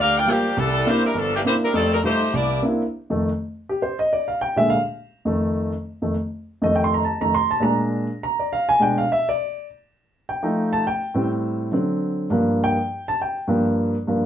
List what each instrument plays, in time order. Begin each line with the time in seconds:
Already playing: grand piano D2
0.01 saxophone section D4 G4 A#4 F5
0.18 saxophone section F4 A#4 D5 G5
0.26 grand piano G3 A#3 F4
0.30 saxophone section F3 A#3 D4 G4
0.57 grand piano C2, saxophone section G3 D4 E4 A4
0.86 grand piano A#3 C4 D4 E4, saxophone section A#3 E4 G4 C5
1.06 saxophone section G3 D4 E4 A#4
1.14 grand piano G1, saxophone section F3 A#3
1.19 saxophone section D4 A4
1.36 saxophone section E3 A#3 D4 G4
1.45 grand piano A#3 C4 D4 E4, saxophone section A#3 E4 G4 C5
1.64 saxophone section G3 D4 E4 A#4
1.73 grand piano F2 A3, saxophone section G3 C4 D#4 A4
1.93 saxophone section G3 C4 D#4 A#4
2.04 grand piano G3 A3 D#4 F4, saxophone section A3 D#4 G4 C5
2.33 grand piano C2, saxophone section A#3 E4 G4 D5
2.62 grand piano A#3 C4 D4 E4
3.10 grand piano F2 D#3 A3
3.69 grand piano G4
3.82 grand piano C5
3.99 grand piano D#5
4.13 grand piano D5
4.28 grand piano F5
4.41 grand piano G5
4.56 grand piano A#2 D3 G#3 E5
4.70 grand piano F5
5.25 grand piano F2 D#3 A3
6.02 grand piano F2 D#3 A3
6.62 grand piano F2 D#3 A3 D#5
6.76 grand piano G5
6.84 grand piano C6
6.94 grand piano A#5
7.05 grand piano A5
7.21 grand piano F2 D#3 A3 A#5
7.35 grand piano C6
7.51 grand piano A5
7.60 grand piano A#2 G#3 D4 A#5
8.23 grand piano A#5
8.39 grand piano D5
8.53 grand piano F5
8.69 grand piano G#5
8.80 grand piano B2 G#3 D4 G5
8.98 grand piano F5
9.12 grand piano E5
9.29 grand piano D5
10.29 grand piano G5
10.43 grand piano F3 A3 D#4
10.73 grand piano A5
10.87 grand piano G5
11.14 grand piano A2 G3 C4
11.72 grand piano D3 F#3 C4
12.30 grand piano G2 F3 A#3
12.64 grand piano G5
13.08 grand piano A5
13.22 grand piano G5
13.47 grand piano G2 F3 A#3
14.07 grand piano G2 F3 A#3